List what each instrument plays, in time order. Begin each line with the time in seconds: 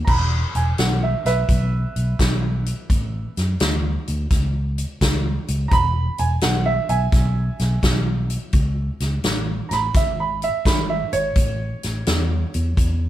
0.05 fingered electric bass E1, upright piano A#5, kick, crash
0.09 upright piano B5
0.55 fingered electric bass E1, upright piano G#5, closed hi-hat
0.78 fingered electric bass B1, upright piano F#5, snare, closed hi-hat
1.03 upright piano E5
1.25 fingered electric bass B1, upright piano B4 E5, snare, closed hi-hat
1.49 fingered electric bass B1, kick, closed hi-hat
1.96 fingered electric bass B1, closed hi-hat
2.19 fingered electric bass B1, kick, snare, closed hi-hat
2.66 closed hi-hat
2.90 fingered electric bass A1, kick, closed hi-hat
3.37 fingered electric bass F#2, snare, closed hi-hat
3.60 fingered electric bass D2, snare, closed hi-hat
4.08 fingered electric bass D2, closed hi-hat
4.30 fingered electric bass C#2, kick, snare, closed hi-hat
4.78 closed hi-hat
5.01 fingered electric bass C#2, kick, snare, closed hi-hat
5.48 fingered electric bass C#2, closed hi-hat
5.68 fingered electric bass E1, upright piano A#5, kick, closed hi-hat
5.73 upright piano B5
6.18 fingered electric bass E1, upright piano G#5, closed hi-hat
6.41 fingered electric bass B1, upright piano F#5, snare, closed hi-hat
6.66 upright piano E5
6.89 fingered electric bass B1, upright piano E5 G#5, closed hi-hat
7.12 fingered electric bass B1, kick, snare, closed hi-hat
7.59 fingered electric bass B1, snare, closed hi-hat
7.83 fingered electric bass B1, kick, snare, closed hi-hat
8.30 closed hi-hat
8.53 fingered electric bass C#2, kick, closed hi-hat
9.00 fingered electric bass C#2, snare, closed hi-hat
9.24 fingered electric bass A1, snare, closed hi-hat
9.69 fingered electric bass A1, upright piano A#5, snare, closed hi-hat
9.73 upright piano B5
9.94 fingered electric bass G#1, upright piano E5, kick, snare, closed hi-hat
10.20 upright piano B5
10.42 upright piano E5, closed hi-hat
10.65 fingered electric bass G#1, upright piano B5, kick, snare, closed hi-hat
10.90 upright piano E5
11.13 fingered electric bass G#1, upright piano C#5, closed hi-hat
11.36 fingered electric bass A1, kick, closed hi-hat
11.83 fingered electric bass A1, snare, closed hi-hat
12.07 fingered electric bass E2, snare, closed hi-hat
12.54 fingered electric bass E2, closed hi-hat
12.77 fingered electric bass E2, kick, closed hi-hat